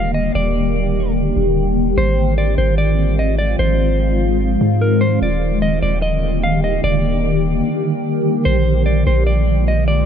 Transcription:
Already playing: D#1 D3 D#3 G3 A#3 G4 F5
0.14 D#5
0.35 D#1 D5
1.37 D#1
1.97 G#1 F3 G#3 C4 F4 C5
2.38 D5
2.58 G#1 C5
2.78 D5
3.19 D#5
3.39 D5
3.59 G#1 C5
4.61 G#2
4.81 A#4
5.01 C5
5.22 D#1 D3 G3 A#3 G4 D5
5.62 D#5
5.82 D#1 D5
6.02 D#5
6.43 F5
6.64 D#5
6.84 D#1 D5
8.45 A#1 D3 F3 G#3 A#3 F4 C5
8.86 D5
9.07 A#1 C5
9.27 D5
9.68 D#5
9.88 D5

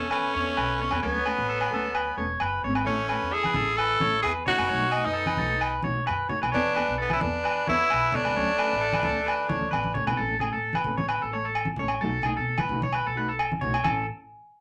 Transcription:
Already playing: E2 C#4
0.10 A3 C#4 B4, low agogo
0.33 E2 B3 D4 A4 C#5
0.57 B1 B4, low agogo
0.80 B3 D4 A4 C#5
0.91 E2 B4, low agogo
1.02 D2 F#3 A3 B3 C#4 A4 C#5
1.25 A3 C#4 A4 B4, low agogo
1.38 A1
1.49 A4
1.61 B4, low agogo
1.71 D2 C#4 A4
1.75 A3
1.95 B4, low agogo
2.17 E1 A3 C#4 A4 C#5
2.40 F#1 B4, low agogo
2.64 G#1 A3 C#4 C#5, muted clean electric guitar stroke
2.75 B4, low agogo
2.84 A1 E3 A3 C#4 A4 C#5
3.09 A3 C#4 A4 B4, low agogo
3.22 E2
3.32 E4 G#4 A4
3.43 B4, high conga, low agogo
3.54 A1 C#4 A4, high conga, low conga
3.77 E4 A4 B4, low agogo
4.00 A1 A3 C#4 A4 C#5, high conga
4.22 E2 E4 G#4 B4, low agogo
4.46 C#4 D#4 F#4 A4 C#5, low conga
4.51 A3
4.58 F#1 B4, low agogo
4.69 B1 F#3 A3 D#4 F#4 C#5
4.91 F#4 D#5, low agogo
4.96 A3 D#4
5.05 F#2 B3 D#4
5.13 A4
5.26 B4, high conga, low agogo
5.37 B1 D#4 F#4 A4, high conga, low conga
5.42 A3
5.61 B4, low agogo
5.82 B1 D#4 F#4 C#5, high conga
5.87 A3
6.07 F#2 B4, low agogo
6.29 A3 D#4 F#4 C#5, low conga
6.42 B1 B4, low agogo
6.52 E2 E3 B3 D4 C#5
6.56 A4
6.75 D4 A4 B4, low agogo
6.79 B3
6.88 B1
6.98 E3 B3 A4
7.10 E4 B4, high conga, low agogo
7.14 C#4
7.20 E2 B3 D4 A4, muted clean electric guitar stroke, high conga, low conga
7.25 B3
7.44 B4, low agogo
7.66 E2 B3 D4 E4 A4 C#5, high conga
7.90 B1 B4, low agogo
8.12 A3 B3 D4 A4 C#5, low conga
8.16 D4
8.23 C#2 B4, low agogo
8.35 D2 F#3 A3 C#4 A4 C#5
8.57 A3 C#4 A4 B4, low agogo
8.73 A1
8.81 A4
8.93 B4, high conga, low agogo
9.03 D2 A3 C#4 A4, high conga, low conga
9.27 B4, low agogo
9.48 D2 A3 C#4 A4 C#5, high conga
9.61 high conga
9.71 A1 B4, high conga, low agogo
9.84 high conga
9.94 A3 C#4 A4 C#5, low conga
10.07 B1 B4, low conga, low agogo
10.17 A1 E3 A3 C#4 A4
10.22 A4
10.39 A3 C#4 G#4 A4, low conga, low agogo
10.53 A2 A4
10.73 B4, high conga, low agogo
10.84 A1 C#4 A4, low conga
10.89 A3
10.97 C#5, high conga
11.08 B4, low agogo
11.22 A1 A4
11.32 A3 A4 C#5, muted clean electric guitar stroke
11.45 A4
11.55 low agogo
11.65 high conga
11.76 A1 C#4 A4 C#5, low conga
11.82 A3
11.88 low agogo
12.01 B1 F#3 A3 D#4 F#4 A4
12.22 G#4, muted clean electric guitar stroke, low conga, low agogo
12.26 A3 D#4
12.37 B2 A4
12.58 B4, high conga, low agogo
12.69 B1 D#4 F#4, low conga
12.74 A3
12.82 C#5, high conga
12.93 B4, low agogo
13.06 B1 A4
13.16 A3 D#4 F#4 B4
13.29 A4
13.39 low agogo
13.52 high conga
13.61 B1 A3 D#4 F#4 C#5, low conga
13.74 low agogo
13.84 A1 E3 C#4 A4, muted clean electric guitar stroke, high conga, low agogo

